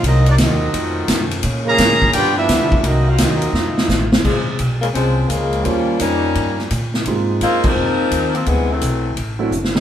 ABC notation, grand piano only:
X:1
M:4/4
L:1/8
Q:"Swing" 1/4=171
K:Bbm
V:1 name="Grand piano"
z8 | z8 | z8 | z8 |
[=G,B,DFc]4- [G,B,DFc] z3 | [A,B,CEF]4- [A,B,CEF] z3 | z4 z [^F,=A,C=D=E] z [=F,_A,C_D_E] |]